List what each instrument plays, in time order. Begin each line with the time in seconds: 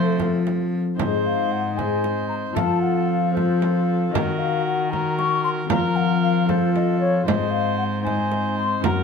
Already playing: cello F3, harp F3 C4 C5, bassoon A3, flute A4, viola C5
0.18 harp C4 F4 A4, frame drum
0.47 frame drum
0.96 cello G#2, harp G#2 C4 D#4 G#4, viola C5, flute D#5, frame drum
1.01 bassoon D#4
1.26 flute F5
1.51 flute F#5
1.73 harp C4 D#4 G#4
1.78 bassoon D#4, viola C5, flute G#5, frame drum
2.04 frame drum
2.29 flute A#5
2.52 harp F3 C4 F4 A4, viola A4, flute A5
2.56 cello F3, bassoon F4, frame drum
2.81 flute F#5
3.09 flute F5
3.31 harp C4 F4 A4, flute C5
3.36 bassoon F4, viola A4, frame drum
3.62 frame drum
4.09 harp D#3 D#4 F#4 A#4, flute D#5
4.14 cello D#3, bassoon F#4, viola A#4, frame drum
4.39 flute F5
4.65 flute F#5
4.90 bassoon F#4, viola A#4, flute A#5, frame drum
5.18 flute C#6, frame drum
5.44 flute C6
5.65 harp F3 C4 F4 A#4, flute A#5
5.70 cello F3, bassoon F4, viola A#4, frame drum
5.96 flute F#5
6.22 flute F5
6.45 harp C4 F4 A4, bassoon F4, flute C5
6.49 viola A4, frame drum
6.76 flute D#5, frame drum
7.00 flute C#5
7.24 cello G#2, harp G#2 C4 D#4 C5, bassoon D#4, viola C5, flute D#5
7.28 frame drum
7.51 flute F5
7.78 flute F#5
8.02 harp C4 D#4 C5, viola C5, flute G#5
8.06 bassoon D#4, frame drum
8.32 frame drum
8.59 flute C6
8.80 harp C#4 F#4 A#4, frame drum
8.84 cello F#2, harp F#2, bassoon F#4, viola A#4, flute A#5